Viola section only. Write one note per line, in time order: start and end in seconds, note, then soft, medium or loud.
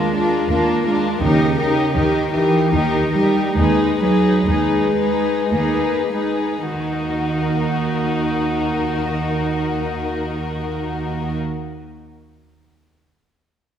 0.00 0.15 D4 soft
0.17 0.51 D4 soft
0.52 0.86 D4 soft
0.88 1.21 D4 soft
1.23 1.57 D#4 medium
1.58 1.93 D#4 medium
1.95 2.32 D#4 soft
2.34 2.72 D#4 soft
2.73 3.13 D#4 soft
3.15 3.55 D#4 soft
3.56 3.99 D#4 soft
4.02 4.47 D#4 soft
4.48 4.97 D#4 soft
4.99 5.52 D#4 soft
5.53 6.11 D#4 soft
6.12 6.71 D#4 soft
6.73 11.36 D#4 soft